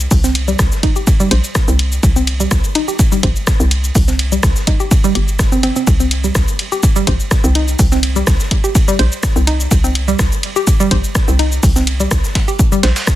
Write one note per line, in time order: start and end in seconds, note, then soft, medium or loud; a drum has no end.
0.11 0.55 C2 loud
0.11 kick loud
0.11 open hi-hat medium
0.11 cabasa medium
0.24 0.29 C4 medium
0.24 snare soft
0.24 cabasa soft
0.35 closed hi-hat loud
0.35 ride medium
0.48 0.51 G3 medium
0.48 cabasa soft
0.59 0.69 C2 medium
0.59 kick loud
0.59 cross-stick loud
0.59 snare loud
0.59 ride medium
0.59 cabasa medium
0.72 snare soft
0.72 cabasa soft
0.83 0.89 D#4 medium
0.83 kick medium
0.83 closed hi-hat loud
0.83 ride medium
0.96 1.01 G4 medium
0.96 cabasa soft
1.07 kick loud
1.07 ride medium
1.07 cabasa medium
1.20 1.27 G3 loud
1.20 cabasa soft
1.31 1.41 A#1 medium
1.31 1.35 C5 medium
1.31 closed hi-hat loud
1.31 ride medium
1.44 cabasa soft
1.55 kick loud
1.55 cross-stick loud
1.55 snare loud
1.55 ride medium
1.55 cabasa medium
1.68 1.99 C2 loud
1.68 1.73 C4 medium
1.68 cabasa soft
1.79 closed hi-hat loud
1.79 ride medium
1.92 cabasa soft
2.03 2.47 C2 loud
2.03 kick loud
2.03 ride medium
2.03 cabasa medium
2.16 2.21 C4 medium
2.16 cabasa soft
2.27 closed hi-hat loud
2.27 ride medium
2.40 2.43 G3 medium
2.40 cabasa soft
2.51 2.61 C2 medium
2.51 kick loud
2.51 cross-stick medium
2.51 snare loud
2.51 ride medium
2.51 cabasa medium
2.64 ride soft
2.64 cabasa soft
2.75 2.81 D#4 medium
2.75 closed hi-hat loud
2.75 ride medium
2.88 2.93 G4 medium
2.88 cabasa soft
2.99 kick loud
2.99 ride medium
2.99 cabasa medium
3.12 3.19 G3 loud
3.12 cabasa soft
3.23 3.33 A#1 medium
3.23 3.27 C5 medium
3.23 kick medium
3.23 closed hi-hat loud
3.23 ride medium
3.36 cabasa soft
3.47 kick loud
3.47 cross-stick loud
3.47 snare loud
3.47 ride medium
3.47 cabasa medium
3.60 3.91 C2 loud
3.60 3.65 C4 medium
3.60 cabasa soft
3.71 closed hi-hat loud
3.71 ride medium
3.84 cabasa soft
3.95 4.39 C2 loud
3.95 kick loud
3.95 open hi-hat medium
3.95 cabasa medium
4.08 4.13 C4 medium
4.08 snare soft
4.08 cabasa soft
4.19 closed hi-hat loud
4.19 ride medium
4.32 4.35 G3 medium
4.32 cabasa soft
4.43 4.53 C2 medium
4.43 kick loud
4.43 cross-stick medium
4.43 snare loud
4.43 ride medium
4.43 cabasa medium
4.56 snare soft
4.56 cabasa soft
4.67 4.73 D#4 medium
4.67 kick medium
4.67 closed hi-hat medium
4.67 ride medium
4.80 4.85 G4 medium
4.80 cabasa soft
4.91 kick loud
4.91 ride medium
4.91 cabasa medium
5.04 5.11 G3 loud
5.04 cabasa soft
5.15 5.71 G1 medium
5.15 5.21 G4 medium
5.15 closed hi-hat loud
5.15 ride medium
5.28 cabasa soft
5.39 kick loud
5.39 cross-stick medium
5.39 snare loud
5.39 ride medium
5.39 cabasa medium
5.52 5.59 C4 loud
5.52 cabasa soft
5.63 5.67 C4 loud
5.63 closed hi-hat medium
5.63 ride medium
5.76 5.79 C4 medium
5.76 cabasa soft
5.87 6.31 C2 loud
5.87 kick loud
5.87 ride medium
5.87 cabasa medium
6.00 6.05 C4 medium
6.00 cabasa soft
6.11 closed hi-hat medium
6.11 ride medium
6.24 6.27 G3 medium
6.24 cabasa soft
6.35 6.45 C2 medium
6.35 kick loud
6.35 cross-stick medium
6.35 snare loud
6.35 ride medium
6.35 cabasa medium
6.48 ride soft
6.48 cabasa soft
6.59 closed hi-hat medium
6.59 ride medium
6.72 6.77 G4 medium
6.72 cabasa soft
6.83 kick loud
6.83 ride medium
6.83 cabasa medium
6.96 7.03 G3 loud
6.96 cabasa soft
7.07 7.17 A#1 medium
7.07 7.11 C5 medium
7.07 kick medium
7.07 closed hi-hat loud
7.07 ride medium
7.20 cabasa soft
7.31 kick loud
7.31 cross-stick medium
7.31 snare loud
7.31 ride medium
7.31 cabasa medium
7.44 7.75 C2 loud
7.44 7.49 C4 medium
7.44 cabasa soft
7.55 7.61 D#4 medium
7.55 closed hi-hat medium
7.55 ride medium
7.68 cabasa soft
7.79 8.23 C2 loud
7.79 kick loud
7.79 open hi-hat medium
7.79 cabasa medium
7.92 7.97 C4 medium
7.92 snare soft
7.92 cabasa soft
8.03 closed hi-hat medium
8.03 ride medium
8.16 8.19 G3 medium
8.16 cabasa soft
8.27 8.37 C2 medium
8.27 kick loud
8.27 cross-stick medium
8.27 snare loud
8.27 ride medium
8.27 cabasa medium
8.40 snare soft
8.40 cabasa soft
8.51 kick medium
8.51 closed hi-hat medium
8.51 ride medium
8.64 8.69 G4 medium
8.64 cabasa soft
8.75 kick loud
8.75 ride medium
8.75 cabasa medium
8.88 8.95 G3 loud
8.88 cabasa soft
8.99 9.09 A#1 medium
8.99 9.03 C5 medium
8.99 closed hi-hat medium
8.99 ride medium
9.12 cabasa soft
9.23 kick loud
9.23 cross-stick medium
9.23 snare loud
9.23 ride medium
9.23 cabasa medium
9.36 9.67 C2 loud
9.36 9.41 C4 medium
9.36 cabasa soft
9.47 9.53 D#4 medium
9.47 closed hi-hat medium
9.47 ride medium
9.60 cabasa soft
9.71 10.15 C2 loud
9.71 kick loud
9.71 ride medium
9.71 cabasa medium
9.84 9.89 C4 medium
9.84 cabasa soft
9.95 closed hi-hat medium
9.95 ride medium
10.08 10.11 G3 medium
10.08 cabasa soft
10.19 10.29 C2 medium
10.19 kick loud
10.19 cross-stick medium
10.19 snare loud
10.19 ride medium
10.19 cabasa medium
10.32 ride soft
10.32 cabasa soft
10.43 closed hi-hat medium
10.43 ride medium
10.56 10.61 G4 medium
10.56 cabasa soft
10.67 kick loud
10.67 ride medium
10.67 cabasa medium
10.80 10.87 G3 loud
10.80 cabasa soft
10.91 11.01 A#1 medium
10.91 10.95 C5 medium
10.91 kick medium
10.91 closed hi-hat medium
10.91 ride medium
11.04 cabasa soft
11.15 kick loud
11.15 cross-stick medium
11.15 snare loud
11.15 ride medium
11.15 cabasa medium
11.28 11.59 C2 loud
11.28 11.33 C4 medium
11.28 cabasa soft
11.39 11.45 D#4 medium
11.39 closed hi-hat medium
11.39 ride medium
11.52 cabasa soft
11.63 12.07 C2 loud
11.63 kick loud
11.63 open hi-hat medium
11.63 cabasa medium
11.76 11.81 C4 medium
11.76 snare soft
11.76 cabasa soft
11.87 closed hi-hat medium
11.87 ride medium
12.00 12.03 G3 medium
12.00 cabasa soft
12.11 12.21 C2 medium
12.11 kick loud
12.11 cross-stick medium
12.11 snare loud
12.11 ride medium
12.11 cabasa medium
12.24 snare soft
12.24 cabasa soft
12.35 kick medium
12.35 snare loud
12.35 closed hi-hat medium
12.35 ride medium
12.48 12.53 G4 medium
12.48 ride soft
12.48 cabasa soft
12.59 kick loud
12.59 ride medium
12.59 cabasa medium
12.72 12.79 G3 loud
12.72 cabasa soft
12.83 12.93 A#1 medium
12.83 12.87 C5 medium
12.83 snare loud
12.83 closed hi-hat medium
12.83 ride medium
12.96 snare loud
12.96 ride medium
12.96 cabasa soft
13.07 kick loud
13.07 cross-stick medium
13.07 snare loud
13.07 ride medium
13.07 cabasa medium